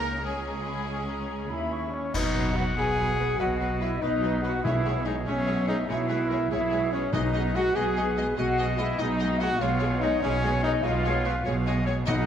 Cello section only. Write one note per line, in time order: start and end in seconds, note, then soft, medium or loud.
0.00 1.48 C#2 medium
1.52 1.95 D#2 medium
2.15 2.70 B2 medium
2.78 3.33 B2 medium
3.40 3.96 B2 medium
4.03 4.58 B2 medium
4.65 5.20 B2 medium
5.28 5.82 B2 medium
5.90 6.44 B2 medium
6.51 7.06 B2 medium
7.13 7.68 B2 medium
7.76 8.31 B2 medium
8.38 8.92 B2 loud
8.99 9.54 B2 medium
9.61 10.16 B2 loud
10.22 10.77 B2 medium
10.85 11.40 B2 loud
11.46 12.01 B2 loud
12.10 12.26 B2 loud